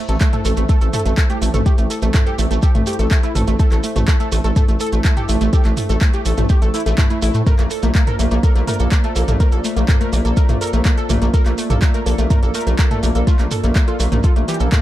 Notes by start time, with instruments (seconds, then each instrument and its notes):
Already playing: analog synth pad A3 E4 A4 C5
0.08 analog synth bass A1, analog synth lead A3, synth arpeggio sound A4, closed hi-hat, shekere
0.20 synth arpeggio sound A3, analog synth lead A3, kick, clap, closed hi-hat, shekere
0.32 synth arpeggio sound A3, analog synth lead A4, closed hi-hat, mid tom, shekere
0.45 analog synth bass A1, analog synth lead A3, synth arpeggio sound A4, open hi-hat, shekere
0.57 analog synth bass A1, synth arpeggio sound A3, analog synth lead A3, closed hi-hat, shekere
0.69 synth arpeggio sound A3, analog synth lead A4, kick, closed hi-hat, shekere
0.81 analog synth bass A1, analog synth lead A3, synth arpeggio sound A4, closed hi-hat, shekere
0.93 synth arpeggio sound A3, analog synth lead A4, mid tom, open hi-hat, shekere
0.99 closed hi-hat
1.06 analog synth bass A1, synth arpeggio sound A3, analog synth lead A3, closed hi-hat, shekere
1.17 analog synth lead A3, synth arpeggio sound A4, kick, clap, closed hi-hat, shekere
1.30 synth arpeggio sound A3, analog synth lead G4, closed hi-hat, shekere
1.42 analog synth bass A1, synth arpeggio sound A3, analog synth lead A3, open hi-hat, shekere
1.54 analog synth bass A1, analog synth lead A3, synth arpeggio sound A4, closed hi-hat, mid tom, shekere
1.66 synth arpeggio sound A3, analog synth lead G4, kick, closed hi-hat, shekere
1.78 analog synth bass A1, synth arpeggio sound A3, analog synth lead A3, closed hi-hat, shekere
1.90 synth arpeggio sound A4, open hi-hat, shekere
2.02 analog synth bass A1, synth arpeggio sound A3, analog synth lead A3, closed hi-hat, shekere
2.14 synth arpeggio sound A3, analog synth lead A3, kick, clap, closed hi-hat, mid tom, shekere
2.26 analog synth lead G4, synth arpeggio sound A4, closed hi-hat, shekere
2.39 analog synth bass A1, analog synth lead A3, synth arpeggio sound A3, open hi-hat, shekere
2.51 analog synth bass A1, analog synth lead A3, synth arpeggio sound A3, closed hi-hat, shekere
2.62 analog synth lead G4, synth arpeggio sound A4, kick, closed hi-hat, shekere
2.75 analog synth bass A1, synth arpeggio sound A3, analog synth lead A3, closed hi-hat, mid tom, shekere
2.86 synth arpeggio sound A3, analog synth lead G4, open hi-hat, shekere
2.93 closed hi-hat
2.99 analog synth bass A1, analog synth lead A3, synth arpeggio sound A4, closed hi-hat, shekere
3.11 analog synth lead A3, synth arpeggio sound A3, kick, clap, closed hi-hat, shekere
3.23 synth arpeggio sound A3, analog synth lead E4, closed hi-hat, shekere
3.35 analog synth bass A1, analog synth lead A3, synth arpeggio sound A4, mid tom, open hi-hat, shekere
3.47 analog synth bass A1, analog synth lead A3, synth arpeggio sound A3, closed hi-hat, shekere
3.59 synth arpeggio sound A3, analog synth lead A4, kick, closed hi-hat, shekere
3.72 analog synth bass A1, analog synth lead A3, synth arpeggio sound A4, clap, closed hi-hat, shekere
3.83 synth arpeggio sound A3, open hi-hat, shekere
3.96 analog synth bass A1, synth arpeggio sound A3, analog synth lead A3, closed hi-hat, mid tom, shekere
4.08 analog synth lead A3, synth arpeggio sound A4, kick, clap, closed hi-hat, shekere
4.20 synth arpeggio sound A3, analog synth lead A4, closed hi-hat, shekere
4.32 analog synth bass A1, analog synth lead A3, synth arpeggio sound A3, open hi-hat, shekere
4.44 analog synth bass A1, analog synth lead A3, synth arpeggio sound A4, closed hi-hat, shekere
4.56 synth arpeggio sound A3, analog synth lead A4, kick, closed hi-hat, mid tom, shekere
4.68 analog synth bass A1, analog synth lead A3, synth arpeggio sound A3, closed hi-hat, shekere
4.80 analog synth lead A4, synth arpeggio sound A4, open hi-hat, shekere
4.87 closed hi-hat
4.92 analog synth bass A1, analog synth lead A3, synth arpeggio sound A3, closed hi-hat, shekere
5.05 analog synth lead A3, synth arpeggio sound A3, kick, clap, closed hi-hat, shekere
5.17 analog synth lead G4, synth arpeggio sound A4, closed hi-hat, mid tom, shekere
5.29 analog synth bass A1, analog synth lead A3, synth arpeggio sound A3, open hi-hat, shekere
5.41 analog synth bass A1, synth arpeggio sound A3, analog synth lead A3, closed hi-hat, shekere
5.53 analog synth lead G4, synth arpeggio sound A4, kick, closed hi-hat, shekere
5.65 analog synth bass A1, synth arpeggio sound A3, analog synth lead A3, clap, closed hi-hat, shekere
5.77 synth arpeggio sound A3, mid tom, open hi-hat, shekere
5.89 analog synth bass A1, analog synth lead A3, synth arpeggio sound A4, closed hi-hat, shekere
6.01 analog synth lead A3, synth arpeggio sound A3, kick, clap, closed hi-hat, shekere
6.14 synth arpeggio sound A3, analog synth lead G4, closed hi-hat, shekere
6.25 analog synth bass A1, analog synth lead A3, synth arpeggio sound A4, open hi-hat, shekere
6.37 analog synth bass A1, analog synth lead A3, synth arpeggio sound A3, closed hi-hat, mid tom, shekere
6.49 synth arpeggio sound A3, analog synth lead G4, kick, closed hi-hat, shekere
6.62 analog synth bass A1, analog synth lead A3, synth arpeggio sound A4, closed hi-hat, shekere
6.74 synth arpeggio sound A3, analog synth lead E4, open hi-hat, shekere
6.80 closed hi-hat
6.86 analog synth bass A1, synth arpeggio sound A3, analog synth lead A3, closed hi-hat, shekere
6.98 analog synth lead A3, synth arpeggio sound E4, kick, clap, closed hi-hat, mid tom, shekere
7.10 synth arpeggio sound A3, analog synth lead E4, closed hi-hat, shekere
7.22 analog synth bass A1, analog synth lead A3, synth arpeggio sound E4, open hi-hat, shekere
7.34 analog synth bass A2, analog synth lead A3, closed hi-hat, shekere
7.46 synth arpeggio sound A3, analog synth pad A#3 F4 C5 D5, analog synth lead A#4, kick, closed hi-hat, mid tom, shekere
7.59 analog synth bass A#1, synth arpeggio sound A3, analog synth lead A#3, clap, closed hi-hat, shekere
7.70 synth arpeggio sound A4, open hi-hat, shekere
7.82 analog synth bass A#1, synth arpeggio sound A3, analog synth lead A#3, closed hi-hat, shekere
7.95 synth arpeggio sound A3, analog synth lead A#3, kick, clap, closed hi-hat, shekere
8.07 synth arpeggio sound A4, analog synth lead A#4, closed hi-hat, mid tom, shekere
8.19 analog synth bass A#1, synth arpeggio sound A3, analog synth lead A#3, open hi-hat, shekere
8.31 analog synth bass A#1, synth arpeggio sound A3, analog synth lead A#3, closed hi-hat, shekere
8.43 synth arpeggio sound A4, analog synth lead A#4, kick, closed hi-hat, shekere
8.56 analog synth bass A#1, synth arpeggio sound A3, analog synth lead A#3, closed hi-hat, shekere
8.67 synth arpeggio sound A3, analog synth lead A#4, mid tom, open hi-hat, shekere
8.74 closed hi-hat
8.79 analog synth bass A#1, analog synth lead A#3, synth arpeggio sound A4, closed hi-hat, shekere
8.91 synth arpeggio sound A3, analog synth lead A#3, kick, clap, closed hi-hat, shekere
9.04 synth arpeggio sound A3, analog synth lead A4, closed hi-hat, shekere
9.16 analog synth bass A#1, analog synth lead A#3, synth arpeggio sound A4, open hi-hat, shekere
9.28 analog synth bass A#1, synth arpeggio sound A3, analog synth lead A#3, closed hi-hat, mid tom, shekere
9.40 synth arpeggio sound A3, analog synth lead A#4, kick, closed hi-hat, shekere
9.51 analog synth bass A#1, analog synth lead A#3, synth arpeggio sound A4, closed hi-hat, shekere
9.64 synth arpeggio sound A3, open hi-hat, shekere
9.77 analog synth bass A#1, synth arpeggio sound A3, analog synth lead A#3, closed hi-hat, shekere
9.88 analog synth lead A#3, synth arpeggio sound A4, kick, clap, closed hi-hat, mid tom, shekere
10.01 synth arpeggio sound A3, analog synth lead A#4, closed hi-hat, shekere
10.13 analog synth bass A#1, synth arpeggio sound A3, analog synth lead A#3, open hi-hat, shekere
10.25 analog synth bass A#1, analog synth lead A#3, synth arpeggio sound A4, closed hi-hat, shekere
10.37 synth arpeggio sound A3, analog synth lead A#4, kick, closed hi-hat, shekere
10.49 analog synth bass A#1, synth arpeggio sound A3, analog synth lead A#3, closed hi-hat, mid tom, shekere
10.61 synth arpeggio sound A4, analog synth lead A#4, open hi-hat, shekere
10.67 closed hi-hat
10.73 analog synth bass A#1, synth arpeggio sound A3, analog synth lead A#3, closed hi-hat, shekere
10.85 synth arpeggio sound A3, analog synth lead A#3, kick, clap, closed hi-hat, shekere
10.97 analog synth lead A4, synth arpeggio sound A4, closed hi-hat, shekere
11.09 analog synth bass A#1, synth arpeggio sound A3, analog synth lead A#3, mid tom, open hi-hat, shekere
11.22 analog synth bass A#1, synth arpeggio sound A3, analog synth lead A#3, closed hi-hat, shekere
11.34 synth arpeggio sound A4, analog synth pad A#4, analog synth lead A#4, kick, closed hi-hat, shekere
11.46 analog synth bass A#1, synth arpeggio sound A3, analog synth lead A#3, clap, closed hi-hat, shekere
11.58 synth arpeggio sound A3, open hi-hat, shekere
11.70 analog synth bass A#1, analog synth lead A#3, synth arpeggio sound A4, closed hi-hat, mid tom, shekere
11.82 synth arpeggio sound A3, analog synth lead A#3, kick, clap, closed hi-hat, shekere
11.94 synth arpeggio sound A3, analog synth lead A#4, closed hi-hat, shekere
12.06 analog synth bass A#1, analog synth lead A#3, synth arpeggio sound A4, open hi-hat, shekere
12.18 analog synth bass A#1, synth arpeggio sound A3, analog synth lead A#3, closed hi-hat, shekere
12.30 synth arpeggio sound A3, analog synth lead A#4, kick, closed hi-hat, mid tom, shekere
12.43 analog synth bass A#1, analog synth lead A#3, synth arpeggio sound A4, closed hi-hat, shekere
12.54 synth arpeggio sound A3, analog synth lead A#4, open hi-hat, shekere
12.61 closed hi-hat
12.67 analog synth bass A#1, synth arpeggio sound A3, analog synth lead A#3, closed hi-hat, shekere
12.79 analog synth lead A#3, synth arpeggio sound A4, kick, clap, closed hi-hat, shekere
12.91 synth arpeggio sound A3, analog synth lead A4, closed hi-hat, mid tom, shekere
13.03 analog synth bass A#1, synth arpeggio sound A3, analog synth lead A#3, open hi-hat, shekere
13.15 analog synth bass A#1, analog synth lead A#3, synth arpeggio sound A4, closed hi-hat, shekere
13.27 synth arpeggio sound A3, analog synth lead F4, kick, closed hi-hat, shekere
13.39 analog synth bass A#1, synth arpeggio sound A3, analog synth lead A#3, clap, closed hi-hat, shekere
13.51 synth arpeggio sound A4, mid tom, open hi-hat, shekere
13.64 analog synth bass A#1, synth arpeggio sound A3, analog synth lead A#3, closed hi-hat, shekere
13.76 synth arpeggio sound A3, analog synth lead A#3, kick, clap, closed hi-hat, shekere
13.88 analog synth lead F4, synth arpeggio sound A4, closed hi-hat, shekere
14.00 analog synth bass A#1, synth arpeggio sound A3, analog synth lead A#3, open hi-hat, shekere
14.12 analog synth bass A#1, synth arpeggio sound A3, analog synth lead A#3, closed hi-hat, mid tom, shekere
14.23 analog synth lead F4, synth arpeggio sound A4, kick, closed hi-hat, shekere
14.36 analog synth bass A#1, synth arpeggio sound A3, analog synth lead A#3, closed hi-hat, shekere
14.48 synth arpeggio sound E3, analog synth lead G4, open hi-hat, shekere
14.54 closed hi-hat
14.60 analog synth bass A#1, analog synth lead A#3, synth arpeggio sound A4, closed hi-hat, shekere
14.72 synth arpeggio sound A3, analog synth lead A#3, kick, clap, closed hi-hat, mid tom, shekere